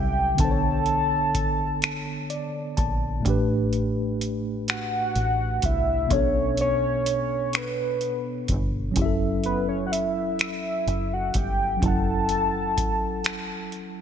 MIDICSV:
0, 0, Header, 1, 5, 480
1, 0, Start_track
1, 0, Key_signature, 2, "minor"
1, 0, Tempo, 952381
1, 197, Time_signature, 6, 3, 24, 8
1, 7063, End_track
2, 0, Start_track
2, 0, Title_t, "Soft synth lead"
2, 0, Program_c, 0, 80
2, 0, Note_on_c, 0, 79, 93
2, 201, Note_off_c, 0, 79, 0
2, 204, Note_on_c, 0, 81, 98
2, 1380, Note_off_c, 0, 81, 0
2, 2366, Note_on_c, 0, 78, 106
2, 2849, Note_on_c, 0, 76, 95
2, 2857, Note_off_c, 0, 78, 0
2, 3086, Note_on_c, 0, 73, 95
2, 3093, Note_off_c, 0, 76, 0
2, 3321, Note_off_c, 0, 73, 0
2, 3331, Note_on_c, 0, 73, 100
2, 3814, Note_on_c, 0, 71, 83
2, 3822, Note_off_c, 0, 73, 0
2, 4345, Note_off_c, 0, 71, 0
2, 4766, Note_on_c, 0, 71, 82
2, 4873, Note_off_c, 0, 71, 0
2, 4881, Note_on_c, 0, 73, 81
2, 4958, Note_off_c, 0, 73, 0
2, 4972, Note_on_c, 0, 78, 71
2, 5000, Note_on_c, 0, 76, 85
2, 5007, Note_off_c, 0, 78, 0
2, 5612, Note_on_c, 0, 78, 91
2, 5620, Note_off_c, 0, 76, 0
2, 5730, Note_on_c, 0, 79, 89
2, 5737, Note_off_c, 0, 78, 0
2, 5963, Note_off_c, 0, 79, 0
2, 5975, Note_on_c, 0, 81, 108
2, 7063, Note_off_c, 0, 81, 0
2, 7063, End_track
3, 0, Start_track
3, 0, Title_t, "Tine electric piano"
3, 0, Program_c, 1, 4
3, 0, Control_c, 1, 64, 127
3, 0, Note_on_c, 1, 54, 70
3, 0, Note_on_c, 1, 61, 67
3, 0, Note_on_c, 1, 64, 62
3, 0, Note_on_c, 1, 69, 64
3, 0, Note_on_c, 1, 76, 74
3, 166, Note_off_c, 1, 54, 0
3, 173, Note_off_c, 1, 61, 0
3, 175, Note_on_c, 1, 50, 63
3, 178, Note_off_c, 1, 64, 0
3, 185, Note_off_c, 1, 69, 0
3, 189, Note_on_c, 1, 59, 55
3, 191, Note_off_c, 1, 76, 0
3, 200, Note_on_c, 1, 62, 54
3, 203, Control_c, 1, 64, 0
3, 211, Note_on_c, 1, 69, 53
3, 225, Note_on_c, 1, 72, 51
3, 244, Note_off_c, 1, 72, 0
3, 258, Note_on_c, 1, 73, 64
3, 282, Control_c, 1, 64, 127
3, 1159, Note_on_c, 1, 74, 61
3, 1381, Note_off_c, 1, 74, 0
3, 1396, Note_on_c, 1, 81, 66
3, 1606, Note_off_c, 1, 50, 0
3, 1613, Note_off_c, 1, 59, 0
3, 1613, Note_on_c, 1, 45, 67
3, 1618, Note_off_c, 1, 62, 0
3, 1620, Note_off_c, 1, 81, 0
3, 1624, Note_off_c, 1, 69, 0
3, 1626, Note_on_c, 1, 57, 64
3, 1639, Note_on_c, 1, 62, 63
3, 1643, Control_c, 1, 64, 0
3, 1647, Note_off_c, 1, 73, 0
3, 1652, Note_on_c, 1, 67, 69
3, 1663, Note_on_c, 1, 71, 74
3, 1737, Control_c, 1, 64, 127
3, 3045, Note_off_c, 1, 45, 0
3, 3051, Note_off_c, 1, 57, 0
3, 3057, Note_on_c, 1, 47, 59
3, 3058, Note_off_c, 1, 62, 0
3, 3064, Note_off_c, 1, 67, 0
3, 3067, Note_on_c, 1, 59, 57
3, 3070, Note_off_c, 1, 71, 0
3, 3081, Note_on_c, 1, 62, 56
3, 3083, Control_c, 1, 64, 0
3, 3096, Note_on_c, 1, 69, 54
3, 3107, Note_on_c, 1, 73, 68
3, 3176, Control_c, 1, 64, 127
3, 4487, Note_off_c, 1, 47, 0
3, 4492, Note_off_c, 1, 59, 0
3, 4493, Note_on_c, 1, 54, 72
3, 4499, Note_off_c, 1, 62, 0
3, 4505, Note_on_c, 1, 61, 65
3, 4506, Note_off_c, 1, 69, 0
3, 4512, Note_off_c, 1, 73, 0
3, 4518, Note_on_c, 1, 64, 63
3, 4524, Control_c, 1, 64, 0
3, 4533, Note_on_c, 1, 67, 52
3, 4544, Note_on_c, 1, 76, 77
3, 4558, Note_off_c, 1, 67, 0
3, 4564, Note_on_c, 1, 69, 67
3, 4625, Control_c, 1, 64, 127
3, 5925, Note_off_c, 1, 54, 0
3, 5931, Note_off_c, 1, 61, 0
3, 5931, Note_on_c, 1, 54, 57
3, 5937, Note_off_c, 1, 64, 0
3, 5946, Note_on_c, 1, 61, 54
3, 5950, Note_off_c, 1, 76, 0
3, 5960, Note_off_c, 1, 69, 0
3, 5961, Note_on_c, 1, 64, 59
3, 5973, Note_on_c, 1, 69, 51
3, 5987, Note_on_c, 1, 78, 67
3, 7063, Note_off_c, 1, 54, 0
3, 7063, Note_off_c, 1, 61, 0
3, 7063, Note_off_c, 1, 64, 0
3, 7063, Note_off_c, 1, 69, 0
3, 7063, Note_off_c, 1, 78, 0
3, 7063, End_track
4, 0, Start_track
4, 0, Title_t, "Fingered electric bass"
4, 0, Program_c, 2, 33
4, 0, Note_on_c, 2, 36, 88
4, 177, Note_off_c, 2, 36, 0
4, 198, Note_on_c, 2, 35, 88
4, 1377, Note_off_c, 2, 35, 0
4, 1400, Note_on_c, 2, 34, 78
4, 1618, Note_off_c, 2, 34, 0
4, 1638, Note_on_c, 2, 33, 90
4, 2577, Note_off_c, 2, 33, 0
4, 2600, Note_on_c, 2, 33, 73
4, 2818, Note_off_c, 2, 33, 0
4, 2839, Note_on_c, 2, 36, 79
4, 3058, Note_off_c, 2, 36, 0
4, 3078, Note_on_c, 2, 35, 97
4, 4280, Note_on_c, 2, 31, 82
4, 4287, Note_off_c, 2, 35, 0
4, 4498, Note_off_c, 2, 31, 0
4, 4517, Note_on_c, 2, 30, 93
4, 5457, Note_off_c, 2, 30, 0
4, 5480, Note_on_c, 2, 30, 83
4, 5698, Note_off_c, 2, 30, 0
4, 5721, Note_on_c, 2, 31, 80
4, 5939, Note_off_c, 2, 31, 0
4, 5962, Note_on_c, 2, 30, 89
4, 7063, Note_off_c, 2, 30, 0
4, 7063, End_track
5, 0, Start_track
5, 0, Title_t, "Drums"
5, 193, Note_on_c, 9, 42, 60
5, 195, Note_on_c, 9, 36, 92
5, 244, Note_off_c, 9, 42, 0
5, 245, Note_off_c, 9, 36, 0
5, 432, Note_on_c, 9, 42, 45
5, 483, Note_off_c, 9, 42, 0
5, 678, Note_on_c, 9, 36, 71
5, 679, Note_on_c, 9, 42, 66
5, 728, Note_off_c, 9, 36, 0
5, 729, Note_off_c, 9, 42, 0
5, 918, Note_on_c, 9, 42, 62
5, 927, Note_on_c, 9, 26, 86
5, 968, Note_off_c, 9, 42, 0
5, 977, Note_off_c, 9, 26, 0
5, 1159, Note_on_c, 9, 42, 36
5, 1210, Note_off_c, 9, 42, 0
5, 1397, Note_on_c, 9, 42, 58
5, 1398, Note_on_c, 9, 36, 78
5, 1448, Note_off_c, 9, 42, 0
5, 1449, Note_off_c, 9, 36, 0
5, 1638, Note_on_c, 9, 36, 89
5, 1641, Note_on_c, 9, 42, 64
5, 1689, Note_off_c, 9, 36, 0
5, 1691, Note_off_c, 9, 42, 0
5, 1878, Note_on_c, 9, 42, 40
5, 1928, Note_off_c, 9, 42, 0
5, 2124, Note_on_c, 9, 42, 72
5, 2174, Note_off_c, 9, 42, 0
5, 2359, Note_on_c, 9, 42, 59
5, 2368, Note_on_c, 9, 26, 82
5, 2409, Note_off_c, 9, 42, 0
5, 2418, Note_off_c, 9, 26, 0
5, 2598, Note_on_c, 9, 42, 36
5, 2649, Note_off_c, 9, 42, 0
5, 2834, Note_on_c, 9, 42, 64
5, 2837, Note_on_c, 9, 36, 75
5, 2884, Note_off_c, 9, 42, 0
5, 2888, Note_off_c, 9, 36, 0
5, 3076, Note_on_c, 9, 36, 93
5, 3077, Note_on_c, 9, 42, 67
5, 3127, Note_off_c, 9, 36, 0
5, 3128, Note_off_c, 9, 42, 0
5, 3314, Note_on_c, 9, 42, 45
5, 3364, Note_off_c, 9, 42, 0
5, 3560, Note_on_c, 9, 42, 70
5, 3610, Note_off_c, 9, 42, 0
5, 3796, Note_on_c, 9, 42, 62
5, 3805, Note_on_c, 9, 26, 77
5, 3847, Note_off_c, 9, 42, 0
5, 3856, Note_off_c, 9, 26, 0
5, 4036, Note_on_c, 9, 42, 39
5, 4087, Note_off_c, 9, 42, 0
5, 4276, Note_on_c, 9, 42, 67
5, 4277, Note_on_c, 9, 36, 79
5, 4326, Note_off_c, 9, 42, 0
5, 4328, Note_off_c, 9, 36, 0
5, 4515, Note_on_c, 9, 42, 62
5, 4516, Note_on_c, 9, 36, 92
5, 4565, Note_off_c, 9, 42, 0
5, 4567, Note_off_c, 9, 36, 0
5, 4756, Note_on_c, 9, 42, 43
5, 4806, Note_off_c, 9, 42, 0
5, 5004, Note_on_c, 9, 42, 67
5, 5055, Note_off_c, 9, 42, 0
5, 5238, Note_on_c, 9, 42, 59
5, 5247, Note_on_c, 9, 26, 86
5, 5288, Note_off_c, 9, 42, 0
5, 5297, Note_off_c, 9, 26, 0
5, 5482, Note_on_c, 9, 42, 33
5, 5532, Note_off_c, 9, 42, 0
5, 5715, Note_on_c, 9, 42, 67
5, 5718, Note_on_c, 9, 36, 72
5, 5766, Note_off_c, 9, 42, 0
5, 5769, Note_off_c, 9, 36, 0
5, 5958, Note_on_c, 9, 36, 97
5, 5960, Note_on_c, 9, 42, 60
5, 6008, Note_off_c, 9, 36, 0
5, 6011, Note_off_c, 9, 42, 0
5, 6193, Note_on_c, 9, 42, 42
5, 6244, Note_off_c, 9, 42, 0
5, 6439, Note_on_c, 9, 36, 71
5, 6440, Note_on_c, 9, 42, 70
5, 6489, Note_off_c, 9, 36, 0
5, 6490, Note_off_c, 9, 42, 0
5, 6675, Note_on_c, 9, 42, 58
5, 6684, Note_on_c, 9, 26, 82
5, 6725, Note_off_c, 9, 42, 0
5, 6734, Note_off_c, 9, 26, 0
5, 6916, Note_on_c, 9, 42, 35
5, 6966, Note_off_c, 9, 42, 0
5, 7063, End_track
0, 0, End_of_file